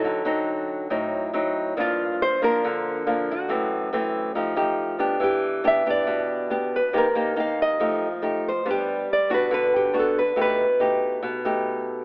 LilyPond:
<<
  \new Staff \with { instrumentName = "Nylon-string guitar" } { \time 4/4 \key g \lydian \tempo 4 = 139 a'4 r2. | f'4 c''8 bes'2 fis'8~ | fis'4 r2. | g'4 e''8 d''2 b'8 |
bes'4 f''8 ees''2 c''8 | g'4 d''8 b'8 b'8 g'8 a'8 b'8 | b'2. r4 | }
  \new Staff \with { instrumentName = "Nylon-string guitar" } { \time 4/4 \key g \lydian << { <fis c' ees'>8 <fis c' ees'>4. <fis c' ees'>4 <fis c' ees'>4 | <f bes d'>4. <f bes d'>4. <f bes d'>8 r8 | <e a c'>4 <e a c'>4 <a ees' g'>8 <a ees' g'>4 <b d' g'>8~ | <b d' g'>4 <b d' g'>8 <b d' g'>4. <b d' g'>8 r8 |
<bes ees' g'>8 <bes ees' g'>8 <bes ees' g'>4 <a ees' g'>8 r8 <a ees' g'>8 r8 | <b d'>4 r8 <b d' fis'>4. <b d' fis'>8 r8 | <a dis' g'>8 r8 <a dis' g'>4. <a dis' g'>4. | } \\ { d2 a,2 | g,2 d2 | fis,2 f2 | e2 b,2 |
c2 f2 | g2 d2 | b,2 b,2 | } >> }
>>